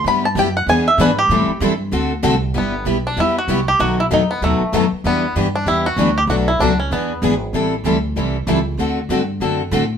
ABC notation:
X:1
M:4/4
L:1/8
Q:"Swing" 1/4=192
K:G
V:1 name="Five-string banjo"
b a g f ^g e B =G- | G2 z6 | B,2 z D E F2 G | F E ^D B, A,3 z |
B,2 z D E F2 G | F E D ^C B,3 z | z8 | z8 |]
V:2 name="Steel-string acoustic guitar"
[G,B,EG] z [G,B,EG] z [E,B,D^G] z [E,B,DG] z | [E,G,CEA] z [E,G,CEA] z [D,A,CFA] z [D,A,CFA] z | [G,B,EG] z [G,B,EG] z [G,B,EG] z [G,B,EG] z | [B,,F,A,^DF] z [B,,F,A,DF] z [B,,F,A,DF] z [B,,F,A,DF] z |
[E,B,DG] z [E,B,DG] z [E,B,DG] z [E,B,DG] z | [B,,F,A,DF] z [B,,F,A,DF] z [E,B,D^G] z [E,B,DG] z | [E,G,CEA] z [E,G,CEA] z [E,G,CEA] z [E,G,CEA] z | [D,A,CFA] z [D,A,CFA] z [D,A,CFA] z [D,A,CFA] z |]
V:3 name="Steel-string acoustic guitar"
[G,B,EG] z [G,B,EG] z [E,B,D^GB] z [E,B,DGB] z | [E,G,CEA] z [E,G,CEA] z [D,A,CFA] z [D,A,CFA] z | [G,B,EG] z [G,B,EG] z [G,B,EG] z [G,B,EG] z | [B,,^D,F,B,^DA] z [B,,D,F,B,DA] z [B,,D,F,B,DA] z [B,,D,F,B,DA] z |
[E,G,DEB] z [E,G,DEB] z [E,G,DEB] z [E,G,DEB] z | [B,,F,A,DFB] z [B,,F,A,DFB] z [E,B,D^GB] z [E,B,DGB] z | [E,G,CEA] z [E,G,CEA] z [E,G,CEA] z [E,G,CEA] z | [D,A,CFA] z [D,A,CFA] z [D,A,CFA] z [D,A,CFA] z |]
V:4 name="Upright bass" clef=bass
G,,2 F,,2 E,,2 ^G,,2 | A,, z G,,2 D,,2 C,,2 | G,,,2 B,,,2 E,,2 C,,2 | B,,,2 E,,2 ^D,, z F,, z |
E,,2 G,,2 E,,2 D,,2 | B,,,2 ^C,,2 E,,2 ^G,,,2 | A,,,2 D,,2 C,,2 ^C,,2 | D,,2 G,,2 F,,2 A,,2 |]